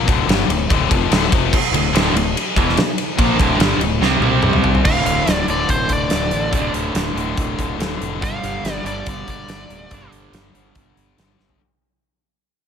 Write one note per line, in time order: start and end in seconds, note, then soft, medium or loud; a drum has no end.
0.07 0.26 D1 medium
0.07 0.26 D2 medium
0.07 0.27 A2 loud
0.07 0.26 D3 loud
0.07 kick loud
0.07 ride medium
0.26 0.46 G1 medium
0.26 0.47 G2 medium
0.26 0.47 D3 loud
0.26 0.48 G3 loud
0.26 snare loud
0.26 ride loud
0.47 0.67 D1 medium
0.47 0.64 D2 medium
0.47 0.64 A2 medium
0.47 ride medium
0.69 0.89 D1 loud
0.69 0.89 D2 loud
0.69 0.89 A2 loud
0.69 0.90 D3 loud
0.69 kick loud
0.69 ride loud
0.90 1.09 F1 medium
0.90 1.10 F2 medium
0.90 1.10 C3 loud
0.90 1.10 F3 loud
0.90 kick loud
0.90 ride medium
1.11 1.30 D1 loud
1.11 1.31 D2 medium
1.11 1.31 A2 loud
1.11 1.31 D3 loud
1.11 snare loud
1.11 ride loud
1.32 1.51 F1 medium
1.32 1.51 F2 medium
1.32 1.52 C3 loud
1.32 1.52 F3 loud
1.32 kick loud
1.32 ride medium
1.53 kick loud
1.53 crash loud
1.71 1.91 D1 medium
1.71 1.90 D2 medium
1.71 1.90 A2 medium
1.71 ride medium
1.93 2.13 D1 loud
1.93 2.13 D2 loud
1.93 2.14 A2 loud
1.93 2.14 D3 loud
1.93 snare loud
1.93 ride loud
2.13 2.33 D1 medium
2.13 2.31 D2 medium
2.13 2.32 A2 medium
2.13 ride medium
2.37 ride loud
2.56 2.75 E1 loud
2.56 2.76 E2 medium
2.56 2.77 B2 loud
2.56 2.77 E3 loud
2.56 kick loud
2.56 ride medium
2.69 snare soft
2.77 snare loud
2.77 ride loud
2.98 ride medium
3.17 3.38 A#1 loud
3.17 3.37 A#2 medium
3.17 3.38 F3 loud
3.17 3.38 A#3 loud
3.17 kick loud
3.17 ride loud
3.37 3.58 D1 loud
3.37 3.58 D2 medium
3.37 3.59 A2 loud
3.37 3.59 D3 loud
3.37 kick loud
3.37 ride medium
3.59 3.77 G1 loud
3.59 3.79 G2 loud
3.59 3.80 D3 loud
3.59 3.81 G3 loud
3.59 snare loud
3.59 ride loud
3.78 3.99 D1 medium
3.78 3.97 D2 medium
3.78 3.97 A2 medium
3.78 ride medium
3.99 4.19 C2 loud
3.99 4.21 C3 medium
3.99 4.22 G3 loud
3.99 4.22 C4 loud
3.99 snare medium
4.20 4.80 C2 loud
4.20 4.84 C3 medium
4.20 4.85 G3 loud
4.20 4.85 C4 loud
4.20 high tom medium
4.42 mid tom medium
4.53 mid tom medium
4.64 floor tom loud
4.75 floor tom medium
4.84 5.03 D1 medium
4.84 5.50 D2 medium
4.84 5.47 A2 medium
4.84 5.47 D3 medium
4.84 5.32 F5 loud
4.84 kick loud
4.84 crash loud
5.04 5.23 D1 medium
5.04 closed hi-hat medium
5.25 5.44 D1 medium
5.25 snare loud
5.25 closed hi-hat loud
5.32 5.46 D5 loud
5.47 5.66 D1 medium
5.47 6.09 D2 medium
5.47 6.10 A2 medium
5.47 6.09 D3 medium
5.47 5.69 D5 medium
5.47 closed hi-hat medium
5.68 5.87 D1 medium
5.68 5.90 C5 medium
5.68 kick loud
5.68 closed hi-hat medium
5.89 6.08 D1 medium
5.89 6.73 D5 medium
5.89 kick medium
5.89 closed hi-hat medium
6.10 6.29 D1 medium
6.10 6.50 D2 medium
6.10 6.52 A2 medium
6.10 6.52 D3 medium
6.10 snare loud
6.10 closed hi-hat medium
6.31 6.50 A1 medium
6.31 closed hi-hat medium
6.51 6.71 D1 medium
6.51 7.14 D2 medium
6.51 7.15 A2 medium
6.51 7.15 D3 loud
6.51 kick loud
6.51 closed hi-hat medium
6.74 6.92 D1 medium
6.74 closed hi-hat medium
6.94 7.13 D1 medium
6.94 snare loud
6.94 closed hi-hat medium
7.14 7.33 D1 medium
7.14 7.79 A2 medium
7.14 7.78 D3 medium
7.14 closed hi-hat medium
7.18 7.77 D2 medium
7.37 7.55 D1 medium
7.37 kick loud
7.37 closed hi-hat medium
7.58 7.76 D1 medium
7.58 kick medium
7.58 closed hi-hat medium
7.78 7.96 D1 medium
7.78 8.19 D2 medium
7.78 8.20 A2 medium
7.78 8.20 D3 medium
7.78 snare loud
7.78 closed hi-hat medium
8.00 8.22 F1 medium
8.00 closed hi-hat medium
8.20 8.40 G1 medium
8.20 8.86 G2 medium
8.20 8.83 D3 medium
8.20 8.84 G3 medium
8.20 kick loud
8.20 closed hi-hat medium
8.24 8.84 F5 loud
8.43 8.61 G1 medium
8.43 closed hi-hat medium
8.63 8.81 G1 medium
8.63 snare loud
8.63 closed hi-hat medium
8.84 9.02 G1 medium
8.84 9.48 G2 medium
8.84 9.47 D3 medium
8.84 9.50 G3 medium
8.84 9.06 D5 medium
8.84 closed hi-hat medium
9.06 9.24 G1 medium
9.06 9.28 D5 medium
9.06 kick loud
9.06 closed hi-hat medium
9.27 9.45 G1 medium
9.27 10.10 D5 loud
9.27 kick medium
9.27 closed hi-hat medium
9.47 9.66 G1 medium
9.47 9.89 G2 medium
9.47 9.89 D3 medium
9.47 9.92 G3 medium
9.47 snare loud
9.47 closed hi-hat medium
9.69 9.87 D1 medium
9.69 closed hi-hat medium
9.90 10.09 G1 medium
9.90 10.52 G2 medium
9.90 10.53 D3 medium
9.90 10.53 G3 medium
9.90 kick loud
9.90 closed hi-hat medium
10.11 10.29 G1 medium
10.11 closed hi-hat medium
10.32 10.50 G1 medium
10.32 snare loud
10.32 closed hi-hat medium
10.54 10.72 G1 medium
10.54 11.16 G2 medium
10.54 11.17 D3 medium
10.54 11.16 G3 medium
10.54 closed hi-hat medium
10.75 10.93 G1 medium
10.75 kick loud
10.75 closed hi-hat medium
10.96 11.14 G1 medium
10.96 closed hi-hat medium
11.17 11.36 G1 medium
11.17 11.58 G2 medium
11.17 11.59 D3 medium
11.17 11.59 G3 medium
11.17 snare loud
11.17 closed hi-hat medium
11.39 11.57 G1 medium
11.39 snare soft
11.49 floor tom medium